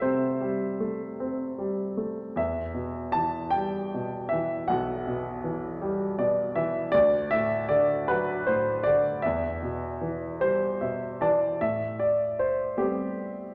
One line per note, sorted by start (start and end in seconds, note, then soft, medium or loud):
0.00 2.34 C3 medium
0.00 0.41 G3 soft
0.00 0.80 A3 soft
0.00 0.36 C4 medium
0.00 1.95 C5 medium
0.00 2.37 E5 medium
0.00 2.40 F#5 medium
0.41 1.57 G3 soft
0.80 1.96 A3 soft
1.20 2.35 C4 soft
1.58 2.35 G3 soft
1.97 2.36 A3 soft
2.36 4.65 E2 medium
2.36 3.12 E5 medium
2.74 3.93 B2 soft
3.12 4.31 E3 soft
3.12 3.54 A5 medium
3.51 5.04 G3 soft
3.51 4.32 G5 medium
3.94 5.06 B2 soft
4.29 5.42 E3 soft
4.29 4.66 E5 medium
4.68 6.90 B1 medium
4.68 5.49 F#5 medium
5.07 6.17 B2 soft
5.44 6.54 E3 soft
5.82 6.91 G3 medium
6.18 6.92 B2 medium
6.18 6.54 D5 medium
6.55 6.93 E3 medium
6.55 6.91 E5 medium
6.92 9.20 D2 medium
6.92 7.28 D5 medium
7.31 8.46 A2 medium
7.31 7.71 E5 medium
7.69 8.86 D3 medium
7.69 8.10 D5 medium
8.08 9.21 F#3 medium
8.08 8.49 B4 medium
8.47 9.22 A2 soft
8.47 8.83 C5 medium
8.84 9.24 D3 soft
8.84 9.20 D5 medium
9.22 11.58 E2 medium
9.22 10.79 E5 medium
9.62 10.80 B2 soft
10.01 11.20 E3 soft
10.40 11.57 G3 soft
10.40 11.24 C5 medium
10.81 11.58 B2 soft
10.81 11.19 E5 medium
11.21 11.60 E3 soft
11.21 11.62 D5 medium
11.21 11.58 A5 medium
11.61 13.54 A2 medium
11.61 12.02 E5 medium
11.99 12.36 D5 medium
12.39 12.76 C5 medium
12.77 13.54 G3 soft
12.77 13.54 A3 soft
12.77 13.54 B3 soft
12.77 13.54 C4 soft
12.77 13.52 G4 medium